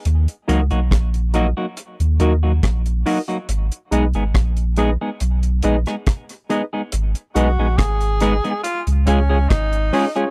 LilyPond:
<<
  \new Staff \with { instrumentName = "Synth stab" } { \time 4/4 \key aes \dorian \tempo 4 = 70 r8 <ees' ges' bes' ees''>16 r8. <ees' ges' bes' ees''>16 r8. <ees' ges' bes' ees''>16 r8. <ees' ges' bes' ees''>16 r16 | r8 <ees' aes' ces'' ees''>16 r8. <ees' aes' ces'' ees''>16 r8. <ees' aes' ces'' ees''>16 r8. <ees' aes' ces'' ees''>16 r16 | r8 <ees' aes' ces'' ees''>16 r8. <ees' aes' ces'' ees''>16 r8. <des' f' aes' des''>16 <aes' des''>16 r8 <des' f' aes' des''>16 <des' f' aes' des''>16 | }
  \new Staff \with { instrumentName = "Tenor saxophone" } { \time 4/4 \key aes \dorian r1 | r1 | r8 ges'8 aes'4 f'16 r16 des'8 ees'8. r16 | }
  \new Staff \with { instrumentName = "Clean electric guitar" } { \time 4/4 \key aes \dorian r8 <ges bes ees' ges'>16 <ges bes ees' ges'>16 r8 <ges bes ees' ges'>16 <ges bes ees' ges'>16 r8 <ges bes ees' ges'>16 <ges bes ees' ges'>16 r8 <ges bes ees' ges'>16 <ges bes ees' ges'>16 | r8 <aes ces' ees' aes'>16 <aes ces' ees' aes'>16 r8 <aes ces' ees' aes'>16 <aes ces' ees' aes'>16 r8 <aes ces' ees' aes'>16 <aes ces' ees' aes'>16 r8 <aes ces' ees' aes'>16 <aes ces' ees' aes'>16 | r8 <aes ces' ees' aes'>16 <aes ces' ees' aes'>16 r8 <aes ces' ees' aes'>16 <aes ces' ees' aes'>16 r8 <aes des' f' aes'>16 <aes des' f' aes'>16 r8 <aes des' f' aes'>16 <aes des' f' aes'>16 | }
  \new Staff \with { instrumentName = "Sub bass" } { \clef bass \time 4/4 \key aes \dorian ees,16 r16 des,16 ces,16 bes,,8. r8 ees,16 ees,8 bes,,8 r8 | aes,,16 r16 ces,16 aes,,16 bes,,8. r16 ces,8 bes,,16 r4 r16 | aes,,16 r16 ces,16 bes,,16 aes,,8. r8 des,16 des,8 aes,,8 r8 | }
  \new DrumStaff \with { instrumentName = "Drums" } \drummode { \time 4/4 hh16 hh16 hh16 hh16 <hh bd ss>16 hh16 hh8 hh16 hh16 hh8 <hh bd ss>16 hh16 hho16 hh16 | hh16 hh16 hh16 hh16 <hh bd ss>16 hh16 hh8 hh16 hh16 hh16 <hh ss>16 <hh bd ss>16 hh16 hh8 | hh16 hh16 hh8 <hh bd ss>16 hh16 <hh ss>16 hh16 hh16 hh16 hh8 <hh bd ss>16 hh16 hho16 hh16 | }
>>